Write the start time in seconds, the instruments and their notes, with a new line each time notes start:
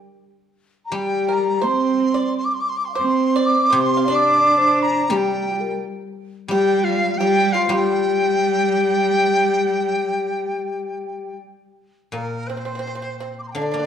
Already playing: guzheng A#4 D5
0.85 dizi A#5
0.91 guzheng G3, cello G3, xiao G4, pipa G4
0.95 dizi G5
1.28 pipa A#4, dizi A#5
1.62 cello C4, pipa C5, xiao C5
1.67 dizi C6
2.14 pipa D5
2.37 dizi C6
2.44 dizi D6
2.54 dizi C6
2.60 dizi D6
2.69 dizi C6
2.76 xiao C6, dizi D6
2.82 xiao G5 A#5, dizi C6
2.89 xiao F5
2.93 pipa C5, xiao C5 D5, dizi D6
2.99 cello C4
3.06 dizi C6
3.36 pipa D5
3.45 dizi D6
3.70 guzheng C3, cello C4, pipa C5, xiao C5
3.80 dizi C6
3.97 pipa F5
4.05 cello D4, xiao D5, pipa D5
4.15 dizi D6
4.58 xiao C5
4.82 dizi A#5
5.10 guzheng G3, cello G3, xiao G4, pipa G4
5.16 dizi G5
5.54 pipa F4
5.61 xiao A#4
6.48 guzheng G3, cello G3, xiao G4, pipa G4, dizi G5
6.84 xiao F4, dizi F5
7.17 cello G3, xiao G4, pipa G4, dizi G5
7.52 pipa F4, dizi F5, xiao G5
7.57 xiao D5 F5
7.64 xiao C5
7.68 guzheng G3, cello G3, pipa F4, xiao G4 A#4, dizi G5
8.37 pipa F#4
8.78 pipa G4
12.12 guzheng A#2, pipa A#3, dizi A#4
12.47 pipa C4, dizi C5
12.57 pipa C4
12.65 pipa C4
12.75 pipa C4
12.87 pipa C4
12.95 pipa C4
13.02 pipa C4
13.20 pipa C4
13.38 dizi C6 D6
13.48 dizi G5 A#5
13.55 guzheng D3, pipa D4, dizi D5 F5
13.61 pipa D4
13.72 guzheng A#3, pipa D4
13.79 pipa D4